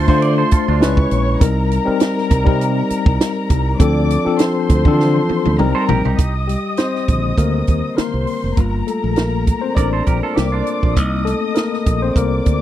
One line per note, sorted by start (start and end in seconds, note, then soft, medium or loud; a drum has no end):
0.00 0.08 A3 medium
0.00 0.08 D4 medium
0.00 0.10 F4 medium
0.00 0.10 C5 medium
0.00 0.78 C5 medium
0.00 0.78 C6 medium
0.08 0.42 D3 loud
0.08 0.81 A3 medium
0.08 0.82 D4 medium
0.08 0.82 F4 medium
0.08 0.22 A4 medium
0.08 0.21 C5 medium
0.08 0.82 C5 medium
0.08 kick medium
0.22 0.37 D5 medium
0.22 closed hi-hat medium
0.38 0.51 A4 medium
0.38 0.51 C5 medium
0.51 0.67 F4 medium
0.51 0.67 A4 medium
0.51 muted fingered electric bass stroke soft
0.51 kick medium
0.51 closed hi-hat medium
0.68 0.82 D2 medium
0.68 0.97 D4 medium
0.68 0.96 F4 medium
0.80 1.05 C#2 loud
0.80 1.36 G#3 medium
0.80 1.37 C#4 medium
0.80 1.37 E4 medium
0.80 1.37 B4 loud
0.80 1.40 C#5 medium
0.80 1.40 C#6 medium
0.80 snare loud
0.80 closed hi-hat medium
0.97 kick loud
1.11 1.35 A#1 medium
1.11 closed hi-hat medium
1.40 1.77 C2 loud
1.40 1.83 G3 medium
1.40 1.83 C4 medium
1.40 1.83 D#4 medium
1.40 3.76 A#4 medium
1.40 1.84 A#4 medium
1.40 3.76 A#5 medium
1.40 kick loud
1.40 closed hi-hat medium
1.71 closed hi-hat medium
1.85 2.41 G3 medium
1.85 2.41 C4 medium
1.85 2.41 D#4 medium
1.85 2.42 A#4 loud
1.85 muted fingered electric bass stroke medium
2.00 snare loud
2.00 closed hi-hat medium
2.18 snare soft
2.31 2.44 C2 loud
2.31 kick loud
2.31 closed hi-hat medium
2.44 2.81 C3 loud
2.44 3.55 G3 medium
2.44 3.55 C4 medium
2.44 3.56 D#4 medium
2.44 3.56 A#4 medium
2.44 kick medium
2.61 closed hi-hat medium
2.90 muted fingered electric bass stroke soft
2.90 closed hi-hat medium
3.06 3.17 C2 medium
3.06 kick loud
3.21 snare loud
3.21 closed hi-hat loud
3.50 3.74 C2 medium
3.50 kick medium
3.50 closed hi-hat medium
3.79 4.16 D2 loud
3.79 4.22 F3 medium
3.79 4.22 C4 medium
3.79 4.22 D4 medium
3.79 4.22 A4 medium
3.79 4.38 D5 medium
3.79 4.38 D6 medium
3.79 kick loud
3.79 closed hi-hat medium
4.10 closed hi-hat medium
4.25 4.80 F3 medium
4.25 4.80 C4 medium
4.25 4.81 D4 medium
4.25 4.81 A4 medium
4.25 muted fingered electric bass stroke soft
4.39 5.56 C5 medium
4.39 5.56 C6 medium
4.39 snare loud
4.39 closed hi-hat medium
4.69 4.82 D2 loud
4.69 kick medium
4.69 closed hi-hat medium
4.85 5.19 D3 medium
4.85 4.91 E3 medium
4.85 5.58 C4 medium
4.85 5.60 D4 medium
4.85 5.60 A4 medium
4.85 kick medium
4.92 5.62 F3 medium
5.00 snare medium
5.29 muted fingered electric bass stroke soft
5.29 high tom medium
5.45 5.57 D2 medium
5.45 high tom medium
5.58 5.72 C2 medium
5.58 6.14 G3 medium
5.58 6.14 C4 medium
5.58 6.15 D#4 medium
5.58 6.17 A#4 medium
5.58 6.15 A#4 loud
5.58 6.17 A#5 medium
5.58 mid tom medium
5.75 5.88 A4 medium
5.75 5.88 C5 medium
5.89 6.02 A#1 medium
5.89 6.04 G4 medium
5.89 6.04 A#4 medium
5.89 floor tom loud
6.05 6.16 C2 medium
6.05 6.34 D#4 medium
6.05 6.33 G4 medium
6.05 floor tom medium
6.18 6.55 C2 medium
6.18 7.94 D#5 medium
6.18 7.94 D#6 medium
6.18 kick loud
6.18 closed hi-hat medium
6.47 6.77 G3 medium
6.47 6.79 G4 medium
6.47 closed hi-hat medium
6.77 7.35 C4 medium
6.77 7.40 C5 loud
6.77 snare loud
6.77 closed hi-hat medium
6.95 snare soft
7.08 7.32 A#1 medium
7.08 8.54 D3 soft
7.08 8.54 D#3 soft
7.08 7.38 A#3 soft
7.08 kick medium
7.08 closed hi-hat medium
7.38 7.61 D2 medium
7.38 7.94 A#3 medium
7.38 7.96 A#4 medium
7.38 kick medium
7.38 closed hi-hat medium
7.67 7.81 D#2 medium
7.67 kick medium
7.67 closed hi-hat medium
7.97 8.41 A#3 medium
7.97 8.40 A#4 medium
7.97 8.56 C5 medium
7.97 8.56 C6 medium
7.97 muted fingered electric bass stroke soft
7.97 snare loud
7.97 closed hi-hat medium
8.14 8.25 C2 medium
8.27 open hi-hat soft
8.44 8.55 F1 medium
8.57 8.81 G1 medium
8.57 8.98 G3 soft
8.57 8.98 A#3 soft
8.57 8.99 F4 soft
8.57 10.33 A#4 medium
8.57 10.33 A#5 medium
8.57 kick loud
8.57 closed hi-hat medium
8.87 9.15 A3 medium
8.87 9.18 A4 medium
8.87 closed hi-hat medium
9.04 9.50 A#1 medium
9.16 9.60 A#3 medium
9.16 9.64 A#4 medium
9.16 snare loud
9.16 closed hi-hat medium
9.47 kick medium
9.47 closed hi-hat medium
9.61 9.76 C4 medium
9.61 9.77 C5 medium
9.75 10.00 A1 medium
9.75 10.33 D4 medium
9.75 9.92 A#4 medium
9.75 10.38 D5 medium
9.75 9.92 D5 medium
9.75 kick medium
9.75 closed hi-hat medium
9.93 10.06 A4 medium
9.93 10.06 C5 medium
10.06 10.20 A#1 medium
10.06 10.22 G4 soft
10.06 10.22 A#4 medium
10.06 kick medium
10.06 closed hi-hat medium
10.23 10.36 F4 medium
10.23 10.36 A4 medium
10.36 10.61 C2 loud
10.36 10.80 A#3 medium
10.36 10.52 G4 medium
10.36 10.79 A#4 medium
10.36 10.95 D5 medium
10.36 10.95 D6 medium
10.36 snare loud
10.36 closed hi-hat medium
10.52 10.94 D4 soft
10.52 10.94 F4 medium
10.67 closed hi-hat medium
10.83 10.97 A#1 medium
10.83 kick medium
10.96 11.33 C2 medium
10.96 11.37 A#3 soft
10.96 11.37 C4 soft
10.96 11.37 D#4 medium
10.96 12.13 D#5 medium
10.96 12.13 D#6 medium
10.96 kick medium
10.96 closed hi-hat medium
11.25 11.55 A3 medium
11.25 11.56 A4 medium
11.25 closed hi-hat medium
11.55 11.99 A#3 medium
11.55 12.03 A#4 medium
11.55 snare medium
11.55 closed hi-hat medium
11.73 snare soft
11.86 12.10 A#1 medium
11.86 kick medium
11.86 closed hi-hat medium
12.02 12.16 C4 medium
12.02 12.16 C5 medium
12.16 12.39 C2 medium
12.16 12.62 A#3 medium
12.16 12.62 A#4 medium
12.16 12.62 D5 medium
12.16 12.62 D6 medium
12.16 kick medium
12.16 closed hi-hat medium
12.46 12.59 D2 medium
12.46 kick medium
12.46 closed hi-hat medium